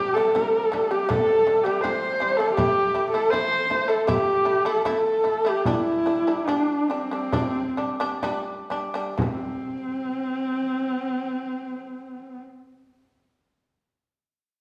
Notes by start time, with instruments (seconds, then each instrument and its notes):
Already playing: shamisen C3, horsehead fiddle G4
0.00 shamisen G3
0.14 shamisen C3 G3, horsehead fiddle A4
0.35 shamisen C3 G3, frame drum
0.72 shamisen C3 G3, frame drum
0.90 shamisen C3 G3, horsehead fiddle G4
1.09 shamisen C3 G3, horsehead fiddle A4, frame drum
1.47 shamisen C3 G3, frame drum
1.63 shamisen C3 G3, horsehead fiddle G4
1.81 shamisen C3 G3, horsehead fiddle C5, frame drum
2.20 shamisen C3 G3, frame drum
2.37 shamisen C3 G3, horsehead fiddle A4
2.55 shamisen A3 E4, horsehead fiddle G4, frame drum
2.95 shamisen A3 E4, frame drum
3.12 shamisen A3 E4, horsehead fiddle A4
3.31 shamisen A3 E4, horsehead fiddle C5, frame drum
3.70 shamisen A3 E4, frame drum
3.88 shamisen A3 E4, horsehead fiddle A4
4.00 horsehead fiddle A4
4.07 shamisen A3 E4, horsehead fiddle G4, frame drum
4.45 shamisen A3 E4, frame drum
4.65 shamisen A3 E4, horsehead fiddle A4
4.85 shamisen A3 E4, horsehead fiddle A4, frame drum
5.24 shamisen A3 E4, frame drum
5.44 shamisen A3 E4, horsehead fiddle G4
5.57 horsehead fiddle G4
5.65 shamisen G3 D4, horsehead fiddle E4, frame drum
6.06 shamisen G3 D4, frame drum
6.27 shamisen G3 D4
6.46 shamisen G3 D4, horsehead fiddle D4, frame drum
6.89 shamisen G3 D4, horsehead fiddle C4
7.11 shamisen G3 D4
7.32 shamisen G3 D4, frame drum
7.77 shamisen G3 D4, frame drum
8.00 shamisen G3 D4
8.23 shamisen G3 D4, frame drum
8.70 shamisen G3 D4, frame drum
8.94 shamisen G3 D4
9.17 shamisen C3, horsehead fiddle C4, frame drum
9.22 shamisen G3